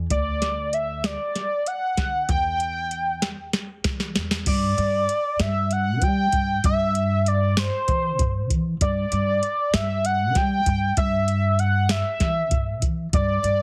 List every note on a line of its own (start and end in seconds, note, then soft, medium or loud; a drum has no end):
0.10 1.14 D2 medium
0.10 0.75 D5 medium
0.10 kick medium
0.10 closed hi-hat medium
0.42 snare soft
0.42 closed hi-hat medium
0.73 1.07 E5 medium
0.73 closed hi-hat medium
1.04 1.69 D5 medium
1.04 snare medium
1.04 closed hi-hat medium
1.35 snare soft
1.35 closed hi-hat medium
1.66 2.29 F#5 loud
1.66 closed hi-hat medium
1.97 2.24 D3 medium
1.97 kick medium
1.97 snare soft
1.97 closed hi-hat medium
2.29 3.33 E2 loud
2.29 3.81 G5 loud
2.29 kick medium
2.29 closed hi-hat medium
2.60 closed hi-hat soft
2.91 closed hi-hat medium
3.22 snare soft
3.22 closed hi-hat medium
3.53 snare medium
3.53 closed hi-hat medium
3.84 4.10 E3 medium
3.84 kick medium
3.84 snare medium
3.84 closed hi-hat medium
4.00 snare medium
4.15 4.41 E2 medium
4.15 snare medium
4.15 closed hi-hat medium
4.31 snare medium
4.46 4.72 G2 medium
4.46 5.42 D5 loud
4.46 kick loud
4.46 closed hi-hat medium
4.46 crash medium
4.77 5.03 G2 medium
4.77 closed hi-hat medium
5.09 closed hi-hat medium
5.39 6.02 G2 medium
5.39 5.74 E5 loud
5.39 snare medium
5.39 closed hi-hat medium
5.71 6.05 F#5 loud
5.71 closed hi-hat medium
6.02 6.28 G3 medium
6.02 6.65 G5 loud
6.02 kick loud
6.02 closed hi-hat medium
6.32 6.59 G2 medium
6.32 kick medium
6.32 closed hi-hat medium
6.64 7.67 G2 loud
6.64 7.29 E5 loud
6.64 kick loud
6.64 closed hi-hat medium
6.95 closed hi-hat medium
7.26 7.60 D5 medium
7.26 closed hi-hat medium
7.57 8.51 C5 medium
7.57 snare medium
7.57 closed hi-hat medium
7.88 8.19 E3 medium
7.88 kick medium
7.88 closed hi-hat medium
8.19 8.50 G2 medium
8.19 kick loud
8.19 closed hi-hat medium
8.50 8.76 E3 medium
8.50 kick medium
8.50 closed hi-hat medium
8.81 9.07 G2 medium
8.81 9.75 D5 loud
8.81 kick loud
8.81 closed hi-hat medium
9.12 9.38 G2 medium
9.12 closed hi-hat medium
9.43 closed hi-hat medium
9.73 10.35 G2 medium
9.73 10.07 E5 loud
9.73 snare loud
9.73 closed hi-hat medium
10.05 10.38 F#5 loud
10.05 closed hi-hat medium
10.35 10.61 G3 medium
10.35 10.97 G5 loud
10.35 kick medium
10.35 snare soft
10.35 closed hi-hat medium
10.66 10.92 G2 medium
10.66 kick medium
10.66 closed hi-hat medium
10.97 12.00 G2 loud
10.97 11.61 E5 loud
10.97 kick loud
10.97 closed hi-hat medium
11.28 closed hi-hat medium
11.59 11.92 F#5 medium
11.59 closed hi-hat medium
11.89 12.83 E5 medium
11.89 snare medium
11.89 closed hi-hat medium
12.20 12.51 E3 medium
12.20 kick medium
12.20 snare soft
12.20 closed hi-hat medium
12.51 12.82 G2 medium
12.51 kick loud
12.51 closed hi-hat medium
12.82 13.08 E3 medium
12.82 kick medium
12.82 closed hi-hat medium
13.13 13.39 G2 medium
13.13 13.62 D5 loud
13.13 kick loud
13.13 closed hi-hat medium
13.43 13.62 G2 medium
13.43 closed hi-hat medium